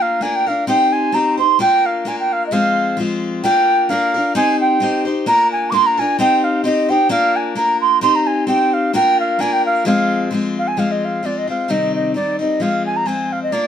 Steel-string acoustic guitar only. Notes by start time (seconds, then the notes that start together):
Already playing: A#3 D4 F4 A#4
0.21 A#3 D4 F4 A#4
0.46 D4 F4 A#4
0.67 C4 D#4 G4 C5
1.12 C4 D#4 G4 C5
1.37 D#4 G4 C5
1.59 A#3 D4 F4 A#4
2.05 A#3 D4 F4 A#4
2.51 F3 G#3 C4 F4
2.97 F3 G#3 C4 F4
3.44 A#3 D4 F4 A#4
3.89 A#3 D4 F4 A#4
4.14 D4 F4 A#4
4.35 C4 D#4 G4 C5
4.80 C4 D#4 G4 C5
5.05 D#4 G4 C5
5.26 A#3 D4 F4 A#4
5.72 A#3 D4 F4 A#4
5.97 D4 F4 A#4
6.19 C4 D#4 G4 C5
6.64 C4 D#4 G4 C5
6.89 D#4 G4 C5
7.09 A#3 D4 F4 A#4
7.55 A#3 D4 F4 A#4
8.01 C4 D#4 G4 C5
8.47 C4 D#4 G4 C5
8.93 A#3 D4 F4 A#4
9.39 A#3 D4 F4 A#4
9.85 F3 G#3 C4 F4
10.31 F3 G#3 C4 F4
10.77 F3 G#3 C4 F4
11.23 F3 G#3 C4 F4
11.47 G#3 C4 F4
11.68 C3 D#3 G3 C4 D#4
12.14 D#3 G3 C4 D#4
12.39 G3 C4 D#4
12.60 F3 G#3 C4 F4
13.06 F3 G#3 C4 F4
13.52 A#3 D4 F4 A#4